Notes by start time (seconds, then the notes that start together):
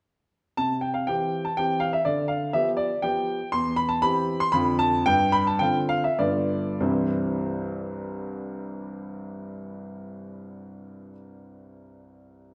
0.57 C3 A5
0.81 G5
0.94 F5
1.07 E3 C4 G4 G5
1.45 A5
1.57 E3 C4 G4 G5
1.80 F5
1.93 E5
2.05 D3 D5
2.28 F5
2.53 F3 B3 G4 E5
2.77 D5
3.02 F3 B3 G4 G5
3.52 E2 C6
3.76 B5
3.89 A5
4.02 E3 C4 G4 B5
4.40 C6
4.52 F2 D3 C4 F4 B5
4.79 A5
5.06 G2 G5
5.32 B5
5.47 A5
5.59 D3 C4 F4 G5
5.89 F5
6.04 E5
6.19 G2 D3 B3 F4 D5
6.80 C2 G2 E3 G3 C4 E4 C5